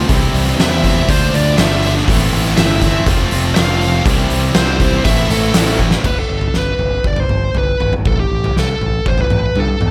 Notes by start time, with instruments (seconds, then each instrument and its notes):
0.08 fingered electric bass C2, distorted electric guitar C3 E3 G3 C4 E4, kick, open hi-hat
0.33 fingered electric bass C2, open hi-hat
0.47 snare
0.58 fingered electric bass E2, distorted electric guitar C3 E3 G3 C4 E4, lead electric guitar E5, snare, open hi-hat
0.83 distorted electric guitar G3 C4 E4, kick, open hi-hat
1.08 fingered electric bass D2, distorted electric guitar D3 A3 D4 F4, lead electric guitar C5, kick, open hi-hat
1.32 fingered electric bass D2, distorted electric guitar A3 D4 F4, lead electric guitar D5, open hi-hat
1.57 fingered electric bass G1, distorted electric guitar D3 A3 D4 F4, lead electric guitar E5, snare, open hi-hat
1.83 distorted electric guitar A3 D4 F4, open hi-hat
1.98 snare
2.07 fingered electric bass A1, distorted electric guitar A2 E3 A3 C4 E4, kick, open hi-hat
2.32 fingered electric bass A1, open hi-hat
2.46 snare
2.56 fingered electric bass G1, distorted electric guitar A2 E3 A3 C4 E4, lead electric guitar E5, snare, open hi-hat
2.81 distorted electric guitar A3 C4 E4, kick, snare, open hi-hat
3.05 fingered electric bass F1, overdriven electric guitar F2 C3, distorted electric guitar F3 A3 C4 F4, kick, open hi-hat
3.10 overdriven electric guitar F3
3.31 fingered electric bass F1, distorted electric guitar A3 C4 F4, open hi-hat
3.55 fingered electric bass F1, distorted electric guitar F3 A3 C4 F4, lead electric guitar F5, snare, open hi-hat
3.80 distorted electric guitar A3 C4 F4, open hi-hat
4.05 fingered electric bass C2, distorted electric guitar C3 E3 G3 C4 E4, kick, open hi-hat
4.30 fingered electric bass C2, open hi-hat
4.54 fingered electric bass C2, distorted electric guitar C3 E3 G3 C4 E4, lead electric guitar C5, snare, open hi-hat
4.78 distorted electric guitar G3 C4 E4, kick, open hi-hat
5.04 fingered electric bass A1, distorted electric guitar A2 E3 A3 C4 E4, lead electric guitar E5, kick, open hi-hat
5.30 fingered electric bass A1, distorted electric guitar A3 C4 E4, lead electric guitar A4, open hi-hat
5.54 fingered electric bass A1, distorted electric guitar A2 E3 A3 C4 E4, snare, open hi-hat
5.79 distorted electric guitar C4 E4, kick
5.83 distorted electric guitar A3
5.91 snare
6.04 fingered electric bass G1, lead electric guitar B4, kick, floor tom, crash
6.19 lead electric guitar A4
6.30 fingered electric bass G1
6.41 floor tom
6.54 fingered electric bass G1, lead electric guitar B4, snare
6.79 fingered electric bass G1, floor tom
7.04 fingered electric bass G1, lead electric guitar D5, kick
7.16 lead electric guitar C5, floor tom
7.29 fingered electric bass G1, mid tom
7.55 fingered electric bass G1, lead electric guitar B4, floor tom
7.80 fingered electric bass G#1, mid tom
7.93 mid tom
8.05 fingered electric bass A1, lead electric guitar A4, kick, floor tom
8.20 lead electric guitar G4
8.32 fingered electric bass A1
8.44 floor tom
8.56 fingered electric bass C2, lead electric guitar A4, snare
8.81 fingered electric bass A1, floor tom
9.06 fingered electric bass A1, lead electric guitar C5, kick
9.18 lead electric guitar B4, floor tom
9.30 fingered electric bass A1, mid tom
9.56 fingered electric bass G2, lead electric guitar A4, floor tom
9.81 fingered electric bass E2, mid tom